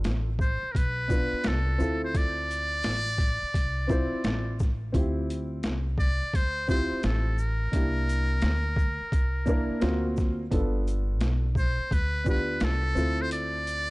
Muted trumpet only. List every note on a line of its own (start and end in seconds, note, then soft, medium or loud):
0.41 0.73 C5 medium
0.72 0.79 A#4 medium
0.77 1.49 B4 medium
1.47 2.04 A4 medium
2.05 2.19 C5 medium
2.17 4.60 D5 loud
5.99 6.37 D5 loud
6.36 6.69 C5 loud
6.69 7.01 C5 loud
7.06 7.41 A4 medium
7.40 10.18 A#4 medium
11.58 11.95 C5 medium
11.93 12.27 B4 medium
12.29 12.66 B4 medium
12.64 13.23 A4 medium
13.22 13.32 C5 loud
13.33 13.90 D5 loud